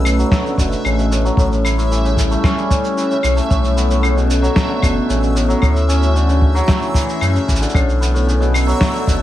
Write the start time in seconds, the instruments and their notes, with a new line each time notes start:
Already playing: sub bass B1, hammered dulcimer B2 A3 B3, ambient pad A3 C#4 B4, synth texture E5 E6
0.05 cabasa, claves
0.18 hammered dulcimer F#3, cabasa
0.31 hammered dulcimer A3, kick, snare, cabasa
0.45 hammered dulcimer D3, cabasa
0.58 sub bass F#1, hammered dulcimer B2, kick, cabasa
0.72 cabasa
0.84 sub bass A1, hammered dulcimer C#3, cabasa, claves
0.98 hammered dulcimer B2, cabasa
1.11 hammered dulcimer A2, cabasa
1.24 hammered dulcimer F#3, cabasa
1.37 sub bass A1, hammered dulcimer A2, ambient pad G3 E4 A4, kick, cabasa
1.52 cabasa
1.64 hammered dulcimer E4, cabasa, claves
1.78 hammered dulcimer A2, cabasa
1.91 hammered dulcimer E3, cabasa
2.04 hammered dulcimer C#3, cabasa
2.17 kick, cabasa
2.31 hammered dulcimer A3, cabasa
2.44 hammered dulcimer C#4, kick, snare, cabasa, claves
2.58 hammered dulcimer G3, cabasa
2.70 hammered dulcimer C#3, kick, cabasa
2.84 cabasa
2.97 hammered dulcimer E3, cabasa
3.11 hammered dulcimer C#3, cabasa
3.23 sub bass B1, hammered dulcimer A2, cabasa, claves
3.36 hammered dulcimer A3, cabasa
3.50 sub bass B1, hammered dulcimer A2, ambient pad B3, kick, cabasa
3.64 cabasa
3.76 hammered dulcimer B3, cabasa
3.90 hammered dulcimer A2, cabasa
4.03 hammered dulcimer C#3, cabasa, claves
4.16 hammered dulcimer B2, cabasa
4.30 cabasa
4.42 hammered dulcimer F#3, cabasa
4.56 hammered dulcimer A3, kick, snare, cabasa
4.69 hammered dulcimer D3
4.82 sub bass F#1, hammered dulcimer B2, kick, cabasa, claves
5.09 sub bass A1, hammered dulcimer C#3, cabasa
5.22 hammered dulcimer B2, cabasa
5.35 hammered dulcimer A2, cabasa
5.48 hammered dulcimer F#3, cabasa
5.61 sub bass D2, hammered dulcimer A2, ambient pad E3 F#4, kick, cabasa, claves
5.76 cabasa
5.88 hammered dulcimer C#4, cabasa
6.01 hammered dulcimer A2, cabasa
6.15 hammered dulcimer D3, cabasa
6.28 hammered dulcimer C#3, cabasa
6.42 kick
6.55 hammered dulcimer F#3, cabasa
6.68 hammered dulcimer A3, kick, snare, cabasa
6.82 hammered dulcimer E3, cabasa
6.94 hammered dulcimer E3, kick, cabasa
7.09 cabasa
7.21 sub bass F#2, hammered dulcimer C#3, cabasa, claves
7.34 hammered dulcimer C#3, cabasa
7.48 sub bass A1, hammered dulcimer E3, kick, cabasa
7.56 cabasa
7.61 hammered dulcimer D3, cabasa
7.69 cabasa
7.74 sub bass B1, hammered dulcimer A2, ambient pad B3 A4, kick, cabasa, claves
7.89 cabasa
8.01 hammered dulcimer B3, cabasa
8.14 hammered dulcimer A2, cabasa
8.27 hammered dulcimer C#3, cabasa
8.40 hammered dulcimer B2, cabasa
8.54 cabasa, claves
8.67 hammered dulcimer F#3, cabasa
8.80 hammered dulcimer A3, kick, snare, cabasa
8.93 hammered dulcimer D3, cabasa
9.07 sub bass F#1, hammered dulcimer B2, kick, cabasa